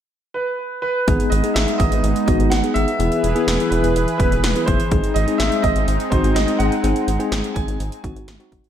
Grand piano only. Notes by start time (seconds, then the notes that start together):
0.34 B4
0.82 B4
1.30 D#5
1.54 E5
1.78 D#5
2.26 D#5
2.50 F#5
2.74 E5
3.70 B4
4.18 B4
4.66 C5
5.14 D#5
5.38 E5
5.62 D#5
6.10 C5
6.34 D#5
6.59 F#5
7.54 G#5